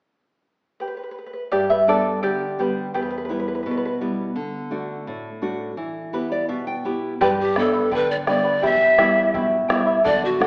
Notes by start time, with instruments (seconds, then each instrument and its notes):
0.80 charango G4 B4
0.88 charango B4
0.97 charango B4
1.04 charango B4
1.11 charango B4
1.18 charango B4
1.26 charango B4
1.33 charango B4
1.52 nylon-string guitar G2, charango G4 D5
1.70 charango B4 E5
1.87 nylon-string guitar G3 B3 D4, charango A4 D5
2.23 nylon-string guitar D3, charango G4 D5
2.59 nylon-string guitar G3 B3 D4, charango G4 B4
2.94 nylon-string guitar E2, charango G4 B4
3.02 charango B4
3.11 charango B4
3.18 charango B4
3.25 charango B4
3.29 nylon-string guitar G3 B3 E4, charango B4
3.40 charango B4
3.48 charango B4
3.55 charango B4
3.63 nylon-string guitar B2, charango B4
3.71 charango B4
3.77 charango B4
3.85 charango B4
4.01 nylon-string guitar G3 B3 E4
4.36 nylon-string guitar D3
4.71 nylon-string guitar A3 D4 F#4
5.07 nylon-string guitar A2
5.42 nylon-string guitar A3 D4 F#4
5.77 nylon-string guitar E3
6.13 nylon-string guitar B3 E4 G4 B4
6.32 nylon-string guitar D5
6.49 nylon-string guitar B2 E5
6.67 nylon-string guitar G5
6.85 nylon-string guitar B3 E4 G4
7.21 nylon-string guitar G2, charango G4 B4 D5 G5 B5, pan flute B4, bombo low
7.41 pan flute G4
7.56 nylon-string guitar G3 B3 D4, pan flute A4, charango B4 D5 G5 B5, bombo rim, bombo low
7.74 charango B4 D5 B5
7.91 nylon-string guitar D3, charango B4 D5 G5 B5, pan flute B4, bombo low
8.11 pan flute D5
8.27 nylon-string guitar G3 B3 D4, charango B4 D5 G5 B5, pan flute D5, bombo rim
8.44 charango B4 D5 B5
8.62 nylon-string guitar E2, charango E4 G4 E5 G5 B5, pan flute E5, bombo low
8.98 nylon-string guitar G3 B3 E4, charango E4 E5 G5 B5, bombo rim, bombo low
9.16 charango E4 E5 B5
9.34 nylon-string guitar B2, charango E4 E5 G5 B5, bombo low
9.68 nylon-string guitar G3 B3 E4, charango E4 E5 G5 B5, bombo rim
9.86 charango E4 E5 B5
10.04 nylon-string guitar D3, charango A4 D5 F#5, pan flute D5, bombo low
10.25 pan flute F#4
10.40 nylon-string guitar A3 D4 F#4, charango A4 D5 F#5, pan flute A4, bombo rim, bombo low